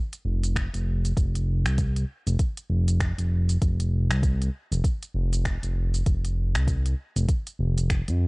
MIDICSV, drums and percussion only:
0, 0, Header, 1, 2, 480
1, 0, Start_track
1, 0, Tempo, 612245
1, 914, Time_signature, 4, 2, 24, 8
1, 6488, End_track
2, 0, Start_track
2, 0, Title_t, "Drums"
2, 101, Note_on_c, 9, 42, 45
2, 103, Note_on_c, 9, 69, 31
2, 179, Note_off_c, 9, 42, 0
2, 181, Note_off_c, 9, 69, 0
2, 341, Note_on_c, 9, 42, 31
2, 343, Note_on_c, 9, 69, 65
2, 420, Note_off_c, 9, 42, 0
2, 421, Note_off_c, 9, 69, 0
2, 437, Note_on_c, 9, 36, 97
2, 441, Note_on_c, 9, 26, 74
2, 441, Note_on_c, 9, 42, 59
2, 443, Note_on_c, 9, 69, 51
2, 516, Note_off_c, 9, 36, 0
2, 519, Note_off_c, 9, 26, 0
2, 519, Note_off_c, 9, 42, 0
2, 521, Note_off_c, 9, 69, 0
2, 581, Note_on_c, 9, 42, 42
2, 583, Note_on_c, 9, 69, 29
2, 660, Note_off_c, 9, 42, 0
2, 661, Note_off_c, 9, 69, 0
2, 823, Note_on_c, 9, 42, 28
2, 824, Note_on_c, 9, 69, 58
2, 901, Note_off_c, 9, 42, 0
2, 903, Note_off_c, 9, 69, 0
2, 916, Note_on_c, 9, 36, 102
2, 919, Note_on_c, 9, 42, 60
2, 921, Note_on_c, 9, 69, 53
2, 994, Note_off_c, 9, 36, 0
2, 997, Note_off_c, 9, 42, 0
2, 999, Note_off_c, 9, 69, 0
2, 1061, Note_on_c, 9, 42, 39
2, 1063, Note_on_c, 9, 69, 33
2, 1140, Note_off_c, 9, 42, 0
2, 1142, Note_off_c, 9, 69, 0
2, 1299, Note_on_c, 9, 26, 75
2, 1299, Note_on_c, 9, 42, 30
2, 1301, Note_on_c, 9, 69, 62
2, 1378, Note_off_c, 9, 26, 0
2, 1378, Note_off_c, 9, 42, 0
2, 1379, Note_off_c, 9, 69, 0
2, 1396, Note_on_c, 9, 36, 105
2, 1396, Note_on_c, 9, 42, 65
2, 1398, Note_on_c, 9, 69, 55
2, 1474, Note_off_c, 9, 36, 0
2, 1474, Note_off_c, 9, 42, 0
2, 1476, Note_off_c, 9, 69, 0
2, 1540, Note_on_c, 9, 42, 40
2, 1541, Note_on_c, 9, 69, 31
2, 1618, Note_off_c, 9, 42, 0
2, 1620, Note_off_c, 9, 69, 0
2, 1780, Note_on_c, 9, 42, 29
2, 1781, Note_on_c, 9, 69, 61
2, 1858, Note_off_c, 9, 42, 0
2, 1860, Note_off_c, 9, 69, 0
2, 1876, Note_on_c, 9, 36, 95
2, 1876, Note_on_c, 9, 42, 59
2, 1878, Note_on_c, 9, 69, 52
2, 1954, Note_off_c, 9, 36, 0
2, 1954, Note_off_c, 9, 42, 0
2, 1956, Note_off_c, 9, 69, 0
2, 2017, Note_on_c, 9, 42, 42
2, 2019, Note_on_c, 9, 69, 31
2, 2096, Note_off_c, 9, 42, 0
2, 2098, Note_off_c, 9, 69, 0
2, 2258, Note_on_c, 9, 42, 30
2, 2259, Note_on_c, 9, 69, 63
2, 2336, Note_off_c, 9, 42, 0
2, 2338, Note_off_c, 9, 69, 0
2, 2355, Note_on_c, 9, 26, 74
2, 2355, Note_on_c, 9, 42, 62
2, 2356, Note_on_c, 9, 36, 105
2, 2357, Note_on_c, 9, 69, 51
2, 2434, Note_off_c, 9, 26, 0
2, 2434, Note_off_c, 9, 36, 0
2, 2434, Note_off_c, 9, 42, 0
2, 2436, Note_off_c, 9, 69, 0
2, 2497, Note_on_c, 9, 42, 39
2, 2499, Note_on_c, 9, 69, 29
2, 2576, Note_off_c, 9, 42, 0
2, 2577, Note_off_c, 9, 69, 0
2, 2738, Note_on_c, 9, 42, 29
2, 2739, Note_on_c, 9, 69, 61
2, 2816, Note_off_c, 9, 42, 0
2, 2818, Note_off_c, 9, 69, 0
2, 2836, Note_on_c, 9, 36, 101
2, 2837, Note_on_c, 9, 42, 62
2, 2839, Note_on_c, 9, 69, 52
2, 2914, Note_off_c, 9, 36, 0
2, 2915, Note_off_c, 9, 42, 0
2, 2917, Note_off_c, 9, 69, 0
2, 2979, Note_on_c, 9, 42, 41
2, 2981, Note_on_c, 9, 69, 31
2, 3057, Note_off_c, 9, 42, 0
2, 3059, Note_off_c, 9, 69, 0
2, 3219, Note_on_c, 9, 26, 71
2, 3219, Note_on_c, 9, 42, 28
2, 3221, Note_on_c, 9, 69, 62
2, 3298, Note_off_c, 9, 26, 0
2, 3298, Note_off_c, 9, 42, 0
2, 3299, Note_off_c, 9, 69, 0
2, 3316, Note_on_c, 9, 36, 108
2, 3318, Note_on_c, 9, 42, 61
2, 3320, Note_on_c, 9, 69, 53
2, 3394, Note_off_c, 9, 36, 0
2, 3397, Note_off_c, 9, 42, 0
2, 3398, Note_off_c, 9, 69, 0
2, 3463, Note_on_c, 9, 42, 38
2, 3465, Note_on_c, 9, 69, 33
2, 3541, Note_off_c, 9, 42, 0
2, 3543, Note_off_c, 9, 69, 0
2, 3701, Note_on_c, 9, 42, 27
2, 3703, Note_on_c, 9, 69, 64
2, 3780, Note_off_c, 9, 42, 0
2, 3781, Note_off_c, 9, 69, 0
2, 3795, Note_on_c, 9, 36, 105
2, 3798, Note_on_c, 9, 42, 58
2, 3800, Note_on_c, 9, 69, 54
2, 3874, Note_off_c, 9, 36, 0
2, 3877, Note_off_c, 9, 42, 0
2, 3878, Note_off_c, 9, 69, 0
2, 3941, Note_on_c, 9, 42, 38
2, 3942, Note_on_c, 9, 69, 31
2, 4019, Note_off_c, 9, 42, 0
2, 4021, Note_off_c, 9, 69, 0
2, 4178, Note_on_c, 9, 42, 29
2, 4179, Note_on_c, 9, 69, 71
2, 4256, Note_off_c, 9, 42, 0
2, 4258, Note_off_c, 9, 69, 0
2, 4274, Note_on_c, 9, 36, 102
2, 4275, Note_on_c, 9, 26, 74
2, 4275, Note_on_c, 9, 42, 57
2, 4277, Note_on_c, 9, 69, 53
2, 4353, Note_off_c, 9, 26, 0
2, 4353, Note_off_c, 9, 36, 0
2, 4353, Note_off_c, 9, 42, 0
2, 4355, Note_off_c, 9, 69, 0
2, 4415, Note_on_c, 9, 42, 40
2, 4417, Note_on_c, 9, 69, 33
2, 4494, Note_off_c, 9, 42, 0
2, 4496, Note_off_c, 9, 69, 0
2, 4658, Note_on_c, 9, 42, 27
2, 4660, Note_on_c, 9, 69, 64
2, 4737, Note_off_c, 9, 42, 0
2, 4738, Note_off_c, 9, 69, 0
2, 4753, Note_on_c, 9, 36, 101
2, 4754, Note_on_c, 9, 42, 60
2, 4755, Note_on_c, 9, 69, 54
2, 4832, Note_off_c, 9, 36, 0
2, 4832, Note_off_c, 9, 42, 0
2, 4834, Note_off_c, 9, 69, 0
2, 4897, Note_on_c, 9, 42, 41
2, 4899, Note_on_c, 9, 69, 32
2, 4976, Note_off_c, 9, 42, 0
2, 4978, Note_off_c, 9, 69, 0
2, 5137, Note_on_c, 9, 26, 69
2, 5137, Note_on_c, 9, 42, 27
2, 5138, Note_on_c, 9, 69, 64
2, 5215, Note_off_c, 9, 26, 0
2, 5215, Note_off_c, 9, 42, 0
2, 5217, Note_off_c, 9, 69, 0
2, 5233, Note_on_c, 9, 36, 105
2, 5236, Note_on_c, 9, 42, 59
2, 5237, Note_on_c, 9, 69, 55
2, 5311, Note_off_c, 9, 36, 0
2, 5314, Note_off_c, 9, 42, 0
2, 5316, Note_off_c, 9, 69, 0
2, 5376, Note_on_c, 9, 42, 41
2, 5378, Note_on_c, 9, 69, 33
2, 5455, Note_off_c, 9, 42, 0
2, 5456, Note_off_c, 9, 69, 0
2, 5616, Note_on_c, 9, 42, 27
2, 5618, Note_on_c, 9, 69, 60
2, 5695, Note_off_c, 9, 42, 0
2, 5697, Note_off_c, 9, 69, 0
2, 5712, Note_on_c, 9, 36, 98
2, 5712, Note_on_c, 9, 42, 58
2, 5714, Note_on_c, 9, 69, 50
2, 5790, Note_off_c, 9, 36, 0
2, 5791, Note_off_c, 9, 42, 0
2, 5793, Note_off_c, 9, 69, 0
2, 5855, Note_on_c, 9, 42, 37
2, 5857, Note_on_c, 9, 69, 30
2, 5933, Note_off_c, 9, 42, 0
2, 5935, Note_off_c, 9, 69, 0
2, 6097, Note_on_c, 9, 42, 27
2, 6099, Note_on_c, 9, 69, 62
2, 6175, Note_off_c, 9, 42, 0
2, 6177, Note_off_c, 9, 69, 0
2, 6193, Note_on_c, 9, 36, 98
2, 6194, Note_on_c, 9, 26, 69
2, 6194, Note_on_c, 9, 42, 57
2, 6195, Note_on_c, 9, 69, 50
2, 6271, Note_off_c, 9, 36, 0
2, 6272, Note_off_c, 9, 26, 0
2, 6272, Note_off_c, 9, 42, 0
2, 6274, Note_off_c, 9, 69, 0
2, 6335, Note_on_c, 9, 42, 39
2, 6337, Note_on_c, 9, 69, 30
2, 6414, Note_off_c, 9, 42, 0
2, 6416, Note_off_c, 9, 69, 0
2, 6488, End_track
0, 0, End_of_file